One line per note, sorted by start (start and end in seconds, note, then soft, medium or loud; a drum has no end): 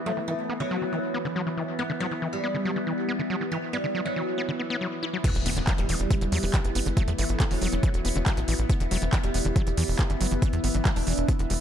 0.00 5.23 E3 medium
0.00 5.23 B3 medium
0.00 11.61 E4 medium
0.00 11.61 B4 medium
0.00 11.61 E5 medium
0.06 0.12 F#3 loud
0.06 0.20 A3 medium
0.17 0.19 E3 medium
0.28 0.34 E3 medium
0.28 0.49 A3 medium
0.49 0.54 B3 loud
0.60 0.63 D3 loud
0.60 1.70 F#3 medium
0.71 0.77 F#3 loud
0.82 0.84 E3 medium
0.93 0.99 E3 medium
1.14 1.18 B3 loud
1.25 1.27 D3 loud
1.36 1.42 F#3 loud
1.47 1.49 E3 medium
1.57 1.64 E3 medium
1.79 1.93 B3 medium
1.79 1.83 B3 medium
1.90 1.92 D3 loud
2.00 2.07 F#3 loud
2.00 2.22 B3 medium
2.11 2.14 E3 medium
2.22 2.28 E3 medium
2.33 3.43 G3 medium
2.44 2.48 B3 loud
2.54 2.57 D3 medium
2.65 2.71 F#3 loud
2.76 2.79 E3 medium
2.87 2.93 E3 medium
3.08 3.13 B3 loud
3.19 3.22 D3 loud
3.30 3.36 F#3 loud
3.41 3.43 E3 medium
3.52 3.58 E3 medium
3.52 3.66 B3 loud
3.73 3.94 G3 medium
3.73 3.77 B3 loud
3.84 3.86 D3 medium
3.95 4.01 F#3 loud
4.05 4.08 E3 medium
4.05 5.16 F#3 medium
4.16 4.23 E3 medium
4.38 4.42 B3 loud
4.49 4.51 D3 loud
4.59 4.62 B3 medium
4.70 4.76 B3 loud
4.81 4.87 F#3 medium
5.03 5.05 E4 loud
5.13 5.18 F#3 medium
5.24 11.61 E3 medium
5.24 5.30 E3 medium
5.24 11.61 B3 medium
5.24 5.38 B3 loud
5.24 kick loud
5.24 closed hi-hat medium
5.24 crash loud
5.24 impact medium
5.35 5.42 E1 medium
5.35 closed hi-hat soft
5.46 5.53 E1 loud
5.46 5.67 B3 loud
5.46 5.50 B3 loud
5.46 open hi-hat loud
5.57 5.63 E1 medium
5.57 5.59 D3 loud
5.57 closed hi-hat soft
5.67 5.74 F#3 loud
5.67 kick loud
5.67 clap loud
5.67 closed hi-hat medium
5.78 5.85 E1 medium
5.78 5.81 E3 medium
5.78 6.88 G3 loud
5.78 closed hi-hat soft
5.89 5.96 E1 loud
5.89 5.95 E3 medium
5.89 open hi-hat loud
6.00 6.07 E1 medium
6.00 closed hi-hat soft
6.11 6.15 B3 loud
6.11 kick loud
6.11 closed hi-hat loud
6.21 6.28 E1 medium
6.21 6.24 D3 loud
6.21 closed hi-hat soft
6.32 6.39 E2 loud
6.32 6.38 F#3 loud
6.32 open hi-hat loud
6.43 6.50 E1 medium
6.43 6.45 E3 medium
6.43 open hi-hat medium
6.54 6.60 E3 medium
6.54 kick loud
6.54 clap loud
6.54 closed hi-hat loud
6.64 6.71 F#1 medium
6.64 closed hi-hat soft
6.75 6.82 F#1 medium
6.75 6.79 B3 loud
6.75 open hi-hat loud
6.86 6.93 F#1 medium
6.86 6.89 D3 loud
6.86 closed hi-hat soft
6.97 7.03 F#3 loud
6.97 7.11 A3 loud
6.97 kick loud
6.97 closed hi-hat loud
7.08 7.14 E2 medium
7.08 7.10 E3 medium
7.08 closed hi-hat soft
7.18 7.25 G1 loud
7.18 7.25 E3 medium
7.18 7.40 A3 loud
7.18 open hi-hat loud
7.29 7.36 G1 medium
7.29 closed hi-hat soft
7.40 7.44 B3 loud
7.40 kick loud
7.40 clap loud
7.40 closed hi-hat medium
7.51 7.58 E1 medium
7.51 7.53 D3 loud
7.51 8.61 F#3 medium
7.51 open hi-hat medium
7.62 7.68 E1 loud
7.62 7.68 F#3 loud
7.62 open hi-hat loud
7.72 7.79 E1 medium
7.72 7.75 E3 medium
7.72 closed hi-hat soft
7.83 7.89 E3 medium
7.83 kick loud
7.83 closed hi-hat medium
7.94 8.01 E1 medium
7.94 closed hi-hat soft
8.05 8.12 E1 loud
8.05 8.09 B3 loud
8.05 open hi-hat loud
8.16 8.22 E1 loud
8.16 8.18 D3 loud
8.16 closed hi-hat soft
8.26 8.33 F#3 loud
8.26 kick loud
8.26 clap loud
8.26 closed hi-hat loud
8.37 8.44 A1 medium
8.37 8.40 E3 medium
8.37 closed hi-hat soft
8.48 8.55 A1 loud
8.48 8.54 E3 medium
8.48 open hi-hat loud
8.59 8.66 A1 medium
8.59 closed hi-hat soft
8.70 8.74 B3 loud
8.70 8.84 B3 loud
8.70 kick loud
8.70 closed hi-hat medium
8.80 8.87 E1 medium
8.80 8.83 D3 loud
8.80 closed hi-hat soft
8.91 8.98 E1 loud
8.91 8.97 F#3 loud
8.91 9.12 B3 loud
8.91 open hi-hat loud
9.02 9.09 E1 medium
9.02 9.04 E3 medium
9.02 closed hi-hat soft
9.13 9.19 E3 medium
9.13 kick loud
9.13 clap loud
9.13 closed hi-hat medium
9.23 9.30 E1 medium
9.23 10.34 G3 loud
9.23 closed hi-hat soft
9.34 9.41 E1 loud
9.34 9.38 B3 loud
9.34 open hi-hat loud
9.45 9.52 E1 medium
9.45 9.48 D3 loud
9.45 closed hi-hat soft
9.56 9.62 F#3 loud
9.56 kick loud
9.56 closed hi-hat medium
9.67 9.73 E1 medium
9.67 9.69 E3 medium
9.67 closed hi-hat soft
9.77 9.84 E2 loud
9.77 9.84 E3 medium
9.77 open hi-hat loud
9.88 9.95 E1 medium
9.88 open hi-hat medium
9.99 10.03 B3 loud
9.99 kick loud
9.99 clap loud
9.99 closed hi-hat medium
10.10 10.17 F#1 medium
10.10 10.12 D3 loud
10.10 closed hi-hat soft
10.21 10.27 F#1 loud
10.21 10.27 F#3 loud
10.21 open hi-hat loud
10.31 10.38 F#1 medium
10.31 10.34 E3 medium
10.31 closed hi-hat soft
10.42 10.48 E3 medium
10.42 10.56 B3 medium
10.42 kick loud
10.42 closed hi-hat medium
10.53 10.60 E2 medium
10.53 closed hi-hat soft
10.64 10.71 G1 loud
10.64 10.68 B3 loud
10.64 10.85 B3 loud
10.64 open hi-hat loud
10.75 10.81 G1 medium
10.75 10.77 D3 loud
10.75 closed hi-hat soft
10.85 10.92 F#3 loud
10.85 kick loud
10.85 clap loud
10.85 closed hi-hat medium
10.96 11.03 E1 medium
10.96 10.99 E3 medium
10.96 11.61 D4 medium
10.96 open hi-hat medium
11.07 11.14 E1 loud
11.07 11.13 E3 medium
11.07 open hi-hat loud
11.18 11.25 E1 medium
11.18 closed hi-hat soft
11.29 11.33 B3 loud
11.29 kick loud
11.29 closed hi-hat medium
11.39 11.46 E1 medium
11.39 11.42 D3 loud
11.39 closed hi-hat soft
11.50 11.57 E1 loud
11.50 11.54 G3 medium
11.50 open hi-hat loud